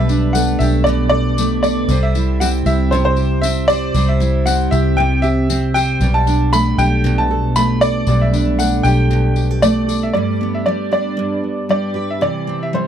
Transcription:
Already playing: fingered electric bass B1, steel-string acoustic guitar B2 A3 G4 B4, nylon-string guitar G3 B3 A4, upright piano E5
0.08 nylon-string guitar D4, steel-string acoustic guitar D4, tambourine
0.33 steel-string acoustic guitar A3, nylon-string guitar A4, upright piano F#5, tambourine
0.59 fingered electric bass B1, nylon-string guitar D4, steel-string acoustic guitar G4, upright piano E5, tambourine
0.84 steel-string acoustic guitar B2, nylon-string guitar B3, upright piano D5, tambourine
1.09 nylon-string guitar A4, upright piano D5
1.37 steel-string acoustic guitar A3, nylon-string guitar B3, tambourine
1.63 nylon-string guitar A4, steel-string acoustic guitar B4, upright piano D5, tambourine
1.88 fingered electric bass C2, steel-string acoustic guitar C3 C5, nylon-string guitar G3, tambourine
2.03 upright piano E5
2.15 nylon-string guitar E4, steel-string acoustic guitar E4, tambourine
2.40 steel-string acoustic guitar C4, nylon-string guitar G4, upright piano F#5, tambourine
2.66 fingered electric bass C2, nylon-string guitar E4, steel-string acoustic guitar G4, upright piano E5, tambourine
2.91 steel-string acoustic guitar C3, nylon-string guitar C4, upright piano C5, tambourine
3.05 upright piano C5
3.17 nylon-string guitar G4, tambourine
3.41 nylon-string guitar C4, steel-string acoustic guitar C4, upright piano E5, tambourine
3.68 nylon-string guitar G4, steel-string acoustic guitar C5, upright piano D5, tambourine
3.94 fingered electric bass C2, steel-string acoustic guitar C3 C5, nylon-string guitar G3, tambourine
4.08 upright piano E5
4.20 steel-string acoustic guitar E4, nylon-string guitar E4, tambourine
4.46 steel-string acoustic guitar C4, nylon-string guitar G4, upright piano F#5, tambourine
4.71 fingered electric bass C2, nylon-string guitar E4, steel-string acoustic guitar G4, upright piano E5, tambourine
4.97 steel-string acoustic guitar C3, nylon-string guitar C4, upright piano G5
5.22 nylon-string guitar G4, upright piano E5, tambourine
5.50 steel-string acoustic guitar C4, nylon-string guitar C4, tambourine
5.74 nylon-string guitar G4, steel-string acoustic guitar C5, upright piano G5, tambourine
6.00 fingered electric bass B1, steel-string acoustic guitar B2 D5, nylon-string guitar G3, tambourine
6.14 upright piano A5
6.27 steel-string acoustic guitar D4, nylon-string guitar D4, tambourine
6.53 steel-string acoustic guitar A3, nylon-string guitar A4, upright piano B5, tambourine
6.78 fingered electric bass B1, nylon-string guitar D4, steel-string acoustic guitar G4, upright piano G5, tambourine
7.04 steel-string acoustic guitar B2, nylon-string guitar B3, tambourine
7.18 upright piano A5
7.31 nylon-string guitar A4
7.56 steel-string acoustic guitar A3, nylon-string guitar B3, upright piano B5, tambourine
7.81 nylon-string guitar A4, upright piano D5, steel-string acoustic guitar D5, tambourine
8.07 fingered electric bass B1, steel-string acoustic guitar B2 D5, nylon-string guitar G3, tambourine
8.21 upright piano E5
8.33 nylon-string guitar D4, steel-string acoustic guitar D4, tambourine
8.59 steel-string acoustic guitar A3, nylon-string guitar A4, upright piano F#5, tambourine
8.83 fingered electric bass B1, nylon-string guitar D4, steel-string acoustic guitar G4, upright piano G5, tambourine
9.10 steel-string acoustic guitar B2, nylon-string guitar B3, tambourine
9.36 nylon-string guitar G4, tambourine
9.51 nylon-string guitar A4
9.62 steel-string acoustic guitar A3, nylon-string guitar B3, upright piano D5, tambourine
9.88 nylon-string guitar A4, steel-string acoustic guitar D5, tambourine
10.03 upright piano E5
10.13 steel-string acoustic guitar G2, nylon-string guitar G3, upright piano D5
10.40 nylon-string guitar B3, steel-string acoustic guitar B3
10.54 upright piano E5
10.66 steel-string acoustic guitar G3, nylon-string guitar D4, upright piano D5
10.91 steel-string acoustic guitar D4, nylon-string guitar G4, upright piano D5
11.17 steel-string acoustic guitar G2, nylon-string guitar D4
11.44 nylon-string guitar B3
11.69 steel-string acoustic guitar G3, nylon-string guitar D4, upright piano D5
11.94 nylon-string guitar G4, steel-string acoustic guitar B4
12.10 upright piano E5
12.21 steel-string acoustic guitar C3, nylon-string guitar E3, upright piano D5
12.47 nylon-string guitar C4, steel-string acoustic guitar C4
12.63 upright piano E5
12.73 steel-string acoustic guitar G3, nylon-string guitar E4, upright piano C5

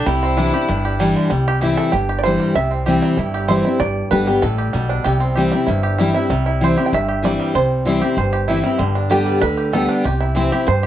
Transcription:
Already playing: five-string banjo G4
0.06 upright bass C2, steel-string acoustic guitar C3, five-string banjo G3, fiddle E4
0.23 five-string banjo C4
0.37 steel-string acoustic guitar E3 G3 D4 E4, five-string banjo D4
0.53 steel-string acoustic guitar D4 E4, five-string banjo G4
0.69 upright bass G1, steel-string acoustic guitar G2, five-string banjo D4
0.85 five-string banjo G4
0.99 steel-string acoustic guitar E3 G3 D4 E4, five-string banjo G3
1.16 five-string banjo D3
1.30 upright bass C2, steel-string acoustic guitar C3, five-string banjo G3
1.48 five-string banjo G4
1.61 steel-string acoustic guitar E3 G3 C4 E4, five-string banjo G4
1.77 five-string banjo A4
1.92 upright bass G1, steel-string acoustic guitar G2, five-string banjo G4
2.09 five-string banjo G4
2.19 five-string banjo D5
2.24 steel-string acoustic guitar E3 G3 C4 E4, five-string banjo C5
2.40 five-string banjo G3
2.55 upright bass C2, steel-string acoustic guitar C3, five-string banjo E5
2.71 five-string banjo C4
2.86 steel-string acoustic guitar E3 G3 C4 E4, five-string banjo G4
3.02 five-string banjo G3
3.17 upright bass G1, steel-string acoustic guitar G2, five-string banjo E4
3.34 five-string banjo G4
3.48 steel-string acoustic guitar E3 G3 C4 E4, five-string banjo C5
3.65 steel-string acoustic guitar C4 E4, five-string banjo E4
3.79 upright bass G1, steel-string acoustic guitar G2, five-string banjo D5
4.11 upright bass G1, steel-string acoustic guitar D3 G3 B3 G4, five-string banjo B4
4.27 five-string banjo G3, steel-string acoustic guitar B3 G4
4.42 upright bass A1, steel-string acoustic guitar A2, five-string banjo A4
4.58 five-string banjo G4
4.73 upright bass B1, steel-string acoustic guitar B2, five-string banjo G3
4.89 five-string banjo D4
5.04 upright bass C2, steel-string acoustic guitar C3, five-string banjo G4
5.20 five-string banjo C4
5.35 steel-string acoustic guitar E3 G3 C4 E4, five-string banjo G4
5.52 five-string banjo G3, steel-string acoustic guitar C4 E4
5.67 upright bass G1, steel-string acoustic guitar G2, five-string banjo E4
5.83 five-string banjo G4
5.98 steel-string acoustic guitar E3 G3 C4 E4, five-string banjo G3
6.14 steel-string acoustic guitar C4 E4, five-string banjo E4
6.30 upright bass C2, steel-string acoustic guitar C3, five-string banjo G3
6.46 five-string banjo E4
6.61 steel-string acoustic guitar E3 G3 C4 E4, five-string banjo C5
6.77 steel-string acoustic guitar C4 E4, five-string banjo G4
6.86 five-string banjo G5
6.92 upright bass G1, steel-string acoustic guitar G2, five-string banjo E5
7.08 five-string banjo G4
7.23 steel-string acoustic guitar E3 G3 C4 E4, five-string banjo D5
7.40 five-string banjo G3
7.55 upright bass C2, steel-string acoustic guitar C3, five-string banjo C5
7.85 steel-string acoustic guitar E3 G3 C4 E4, five-string banjo C4
8.01 steel-string acoustic guitar C4 E4, five-string banjo G4
8.17 upright bass G1, steel-string acoustic guitar G2, five-string banjo C5
8.33 five-string banjo G4
8.48 steel-string acoustic guitar E3 G3 C4 E4, five-string banjo E4
8.64 five-string banjo G3, steel-string acoustic guitar C4 E4
8.78 upright bass G1, steel-string acoustic guitar G2, five-string banjo D3
8.95 five-string banjo D4
9.09 steel-string acoustic guitar D3 G3 B3 G4, five-string banjo G4
9.26 five-string banjo G3
9.41 upright bass D2, steel-string acoustic guitar D3, five-string banjo B4
9.57 five-string banjo G4
9.72 steel-string acoustic guitar D3 G3 B3 G4, five-string banjo A4
9.89 five-string banjo D4
10.04 upright bass C2, steel-string acoustic guitar C3, five-string banjo G4
10.20 five-string banjo E4
10.35 steel-string acoustic guitar E3 G3 C4 E4, five-string banjo C4
10.52 steel-string acoustic guitar C4 E4, five-string banjo G4
10.67 steel-string acoustic guitar G2, upright bass G2, five-string banjo C5
10.83 five-string banjo G4

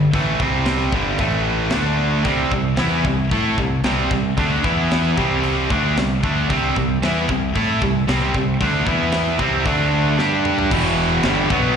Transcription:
Already playing: fingered electric bass G1
0.13 fingered electric bass A1, distorted electric guitar A2 E3 A3, kick, open hi-hat
0.40 fingered electric bass C2, distorted electric guitar C3 G3 C4, kick
0.66 snare, open hi-hat
0.92 fingered electric bass G1, distorted electric guitar G2 D3 G3, kick
1.18 fingered electric bass A1, distorted electric guitar A2 E3 A3, kick, open hi-hat
1.70 fingered electric bass D2, distorted electric guitar D3 A3 D4, snare, open hi-hat
2.24 fingered electric bass C2, distorted electric guitar C3 G3 C4, kick, open hi-hat
2.52 fingered electric bass C2, distorted electric guitar C3 G3, kick
2.77 fingered electric bass E2, distorted electric guitar E3 B3 E4, snare, open hi-hat
3.05 fingered electric bass C2, distorted electric guitar C3 G3, kick
3.31 fingered electric bass A2, distorted electric guitar A3 E4 A4, kick, open hi-hat
3.58 fingered electric bass C2, distorted electric guitar C3 G3, kick
3.84 fingered electric bass C2, distorted electric guitar C3 G3 C4, snare, open hi-hat
4.11 fingered electric bass C2, distorted electric guitar C3 G3, kick
4.37 fingered electric bass D2, distorted electric guitar D3 A3 D4, kick, open hi-hat
4.64 fingered electric bass E2, distorted electric guitar E3 B3 E4, kick
4.91 snare, open hi-hat
5.18 fingered electric bass C2, distorted electric guitar C3 G3 C4, kick
5.43 open hi-hat
5.70 fingered electric bass D2, distorted electric guitar D3 A3 D4, kick
5.97 fingered electric bass C2, distorted electric guitar C3 G3, snare, open hi-hat
6.23 fingered electric bass D2, distorted electric guitar D3 A3 D4, kick
6.50 fingered electric bass C2, distorted electric guitar C3 G3 C4, kick, open hi-hat
6.76 fingered electric bass C2, distorted electric guitar C3 G3, kick
7.03 fingered electric bass E2, distorted electric guitar E3 B3 E4, snare, open hi-hat
7.29 fingered electric bass C2, distorted electric guitar C3 G3, kick
7.55 fingered electric bass A2, distorted electric guitar A3 E4 A4, kick, open hi-hat
7.82 fingered electric bass C2, distorted electric guitar C3 G3, kick
8.08 fingered electric bass C2, distorted electric guitar C3 G3 C4, snare, open hi-hat
8.34 fingered electric bass C2, distorted electric guitar C3 G3, kick
8.61 fingered electric bass D2, distorted electric guitar D3 A3 D4, kick, open hi-hat
8.87 fingered electric bass E2, distorted electric guitar E3 B3 E4, kick
9.12 snare, open hi-hat
9.39 fingered electric bass C2, distorted electric guitar C3 G3 C4, kick
9.66 fingered electric bass D2, distorted electric guitar D3 A3 D4, kick, open hi-hat
10.19 fingered electric bass G2, distorted electric guitar G3 D4 G4, snare
10.45 mid tom
10.59 floor tom
10.71 fingered electric bass E1, distorted electric guitar E2 B2 E3, kick, crash
11.23 fingered electric bass G1, distorted electric guitar G2 D3 G3, snare, crash
11.50 fingered electric bass B1, distorted electric guitar B2 F#3 B3, kick

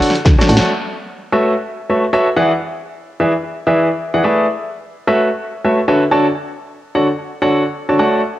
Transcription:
Already playing: grand piano D3 F#4 A4 C#5 D5 F#5
0.02 closed hi-hat, open hi-hat
0.10 snare
0.15 snare, closed hi-hat
0.25 fm bass D2, kick, snare, closed hi-hat
0.38 grand piano D3 F#4 A4 C#5 D5 A5, snare
0.41 snare
0.49 fm bass A1, grand piano A3 F#4 A4 C#5 D5 F#5, closed hi-hat, open hi-hat
0.57 snare
0.62 snare, closed hi-hat
1.32 grand piano A3 F#4 A4 B4 C#5 E5
1.90 grand piano A3 F#4 A4 B4 C#5 E5
2.13 grand piano F#4 A4 B4 C#5 E5
2.36 grand piano E3 E4 G#4 B4 D5 F#5
3.20 grand piano E3 E4 G#4 B4 D5 E5
3.67 grand piano E3 E4 G#4 B4 D5 E5
4.14 grand piano E3 E4 G#4 B4 D5 F#5
4.24 grand piano A3 E4 G#4 B4 D5 E5
5.07 grand piano A3 F#4 A4 B4 C#5 E5
5.65 grand piano A3 F#4 A4 B4 C#5 E5
5.88 grand piano D3 F#4 A4 B4 C#5 E5
6.11 grand piano D3 F#4 A4 C#5 D5 A5
6.95 grand piano D3 F#4 A4 C#5 D5 F#5
7.42 grand piano D3 F#4 A4 C#5 D5 F#5
7.89 grand piano D3 F#4 A4 C#5 D5 A5
7.99 grand piano A3 F#4 A4 C#5 D5 F#5

